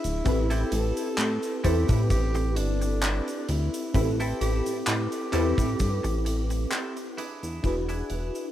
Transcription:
Already playing: D4 E4 F#4 G#4 B4 E5
0.04 D1, closed hi-hat, cabasa
0.24 A1 C4 E4 G4 A4 B4, muted clean electric guitar stroke, kick, closed hi-hat, cabasa
0.50 C4 E4 G4 A4, closed hi-hat, cabasa
0.72 A1 A4, closed hi-hat
0.97 closed hi-hat, cabasa
1.18 A2, clap, closed hi-hat, cabasa
1.43 closed hi-hat, cabasa
1.64 E2 C4 E4 G4 A4 B4, kick, closed hi-hat
1.89 A2, kick, closed hi-hat, cabasa
2.10 A1 G4, kick, closed hi-hat, cabasa
2.34 muted clean electric guitar stroke, closed hi-hat, cabasa
2.56 G1 D4, muted clean electric guitar stroke, closed hi-hat
2.81 muted clean electric guitar stroke, closed hi-hat, cabasa
3.02 C4 E4 G4 B4, clap, closed hi-hat, cabasa
3.28 closed hi-hat, cabasa
3.49 D2 E4, muted clean electric guitar stroke, closed hi-hat
3.74 closed hi-hat, cabasa
3.94 A1 C4 E4 G4 A4 B4, muted clean electric guitar stroke, kick, closed hi-hat, cabasa
4.20 C4 E4 G4 A4, closed hi-hat, cabasa
4.41 A1 G4, closed hi-hat
4.66 A2, closed hi-hat, cabasa
4.87 A2 G4, clap, closed hi-hat, cabasa
5.12 closed hi-hat, cabasa
5.32 E2 C4 E4 G4 A4 B4, clap, closed hi-hat
5.58 A2, kick, closed hi-hat, cabasa
5.79 G2, kick, closed hi-hat, cabasa
6.04 A1, muted clean electric guitar stroke, closed hi-hat, cabasa
6.25 muted clean electric guitar stroke, closed hi-hat
6.50 muted clean electric guitar stroke, closed hi-hat, cabasa
6.71 C4 E4 G4 A4, clap, closed hi-hat, cabasa
6.97 closed hi-hat, cabasa
7.18 D4 E4 G#4 B4, closed hi-hat
7.43 E2, closed hi-hat, cabasa
7.63 E1 D4 E4 F#4 G#4 B4, kick, closed hi-hat, cabasa
7.89 D4 E4 G#4 B4, closed hi-hat, cabasa
8.10 E1, closed hi-hat
8.35 closed hi-hat, cabasa

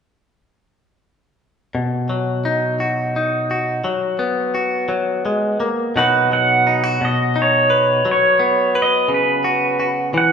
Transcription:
1.75 B2
2.09 F#3
2.45 D#4
2.80 F#4
3.16 D#4
3.51 F#4
3.84 F#3
4.19 B3
4.55 F#4
4.89 F#3
5.26 G#3
5.60 A#3
5.96 B2 F#3 D#4 F#4 B4 F#5
6.32 F#3 F#5
6.67 D#4
6.84 F#4
7.01 B2 D#5
7.36 D#4
7.42 C#5
7.70 B4
8.05 F#3
8.11 C#5
8.39 B3
8.75 B4
8.82 D#5
9.08 C#3
9.14 B4
9.44 F#4
9.80 F#4
10.14 E3 F#5

